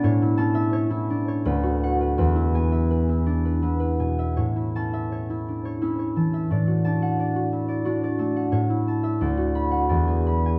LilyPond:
<<
  \new Staff \with { instrumentName = "Harp" } { \time 3/4 \key a \major \tempo 4 = 85 << { r8 a''4. r8 fis''8 | r8 gis''2~ gis''8 | r8 a''2~ a''8~ | a''8 a''2~ a''8~ |
a''8 a''8 r8 b''4 b''8 | } \\ { cis''16 e'8 e''16 cis''16 e'16 d'16 cis''16 b'16 fis'8 b'16 | b'16 e'8 e''16 b'16 e'16 d'16 b'16 e'16 b'16 gis''16 e''16 | cis''16 e'8 e''16 cis''16 e'16 d'16 cis''16 e'16 cis''16 a''16 e''16 | d''16 fis'8 fis''16 d''16 fis'16 e'16 d''16 fis'16 d''16 a''16 fis''16 |
cis''16 e'8 e''16 d''16 fis'8 fis''16 d''16 gis'8 gis''16 | } >> }
  \new Staff \with { instrumentName = "Harp" } { \clef bass \time 3/4 \key a \major a,8 cis'4. d,4 | e,8 b4. b8 b,8 | a,8 cis'4. cis'8 e8 | a,8 d'4. d'8 a8 |
a,4 d,4 e,4 | }
>>